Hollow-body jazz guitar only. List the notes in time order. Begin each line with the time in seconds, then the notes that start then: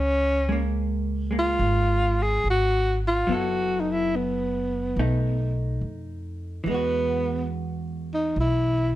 0.49 G#3 A#3
1.31 G#3 A#3
3.27 F#3 B3 E4
3.32 A4
4.99 A3 D#4
6.64 E3 G#3
6.74 F#4